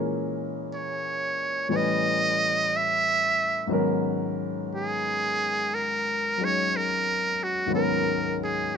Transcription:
0.00 1.71 A#2 medium
0.00 1.68 E3 soft
0.00 1.71 G#3 soft
0.00 1.71 C#4 soft
0.00 1.71 A#4 medium
0.74 1.69 C#5 medium
1.69 3.70 A2 soft
1.69 3.70 E3 soft
1.69 3.71 G3 soft
1.69 3.70 C#4 soft
1.69 1.77 C#5 medium
1.73 3.72 B4 soft
1.73 2.78 D#5 medium
2.77 3.74 E5 medium
3.67 7.65 G#2 medium
3.67 7.66 D#3 soft
3.67 6.36 F#3 soft
3.67 7.70 B3 soft
3.72 6.39 C#4 soft
3.72 7.73 A#4 medium
4.75 5.76 G#4 medium
5.74 6.46 A#4 medium
6.38 7.69 F#3 soft
6.38 7.72 G#3 soft
6.38 7.72 C#4 soft
6.38 7.72 D#4 soft
6.38 7.72 C#5 soft
6.44 6.78 C#5 medium
6.76 7.45 A#4 medium
7.43 7.73 F#4 medium
7.66 8.77 G#2 soft
7.66 8.77 D#3 soft
7.66 8.77 F#3 soft
7.72 8.77 B3 soft
7.72 8.77 C#4 soft
7.72 8.38 A#4 medium
7.77 8.77 A#4 medium
8.43 8.77 G#4 medium

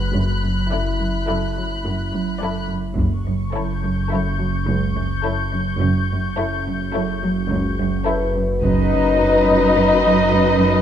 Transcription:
0.00 2.93 F#1 soft
0.00 0.17 B4 soft
0.00 2.66 B5 soft
0.00 2.65 F#6 soft
0.14 0.59 F#1 soft
0.14 0.31 F#2 soft
0.14 0.59 F#2 soft
0.42 0.59 F#2 soft
0.70 0.88 F#2 soft
0.70 2.36 E4 soft
0.70 1.13 E4 soft
0.70 1.14 A4 soft
0.70 1.13 D5 soft
0.70 2.36 E5 soft
0.99 1.16 F#2 soft
1.27 1.45 F#2 soft
1.27 1.70 E4 soft
1.27 1.70 A4 soft
1.27 1.70 D5 soft
1.56 1.73 F#3 soft
1.84 2.01 F#2 soft
1.84 2.29 F#2 soft
2.12 2.29 F#2 soft
2.41 2.58 F#2 soft
2.41 2.84 E4 soft
2.41 2.84 A4 soft
2.41 2.83 D5 soft
2.69 2.86 F#2 soft
2.97 5.77 F#1 soft
2.97 3.42 F#1 soft
2.97 3.14 F#2 soft
2.97 3.42 F#2 soft
2.97 8.32 C#6 soft
2.97 taiko soft
3.26 3.43 F#2 soft
3.54 3.71 F#2 soft
3.54 3.96 E4 soft
3.54 3.96 A4 soft
3.54 3.97 C#5 soft
3.54 8.32 G6 soft
3.83 4.00 F#2 soft
4.10 4.27 F#2 soft
4.10 4.53 E4 soft
4.10 4.53 A4 soft
4.10 4.53 C#5 soft
4.38 4.55 F#3 soft
4.67 5.12 C#2 soft
4.67 4.84 F#2 soft
4.95 5.12 F#2 soft
5.24 5.41 F#2 soft
5.24 5.66 E4 soft
5.24 5.66 A4 soft
5.24 5.66 C#5 soft
5.52 5.69 F#2 soft
5.80 10.82 F#1 medium
5.80 6.25 F#1 soft
5.80 5.97 F#2 soft
5.80 6.25 F#2 soft
6.09 6.26 F#2 soft
6.36 6.54 F#2 soft
6.36 6.80 E4 soft
6.36 6.80 A4 soft
6.36 6.79 C#5 soft
6.65 6.82 F#2 soft
6.93 7.10 F#2 soft
6.93 7.36 E4 soft
6.93 7.36 A4 soft
6.93 7.36 C#5 soft
7.22 7.39 F#3 soft
7.49 7.95 C#2 soft
7.49 7.67 F#2 soft
7.78 7.95 F#2 soft
8.06 8.24 F#2 soft
8.06 8.49 E4 soft
8.06 8.48 A4 soft
8.06 9.19 B4 soft
8.06 8.49 C#5 soft
8.35 8.52 F#2 soft
8.62 9.16 F#1 soft
8.62 10.82 F#2 soft
8.62 8.80 F#2 soft
8.62 10.82 D#4 soft
8.62 10.82 B4 soft
8.62 10.82 D#5 soft
8.62 taiko soft
8.92 9.09 F#2 soft
9.19 9.37 F#2 soft
9.19 10.82 B4 soft
9.48 9.65 F#2 soft
9.76 9.93 F#2 soft
10.04 10.21 F#3 soft
10.32 10.49 F#2 soft
10.60 10.78 F#2 soft

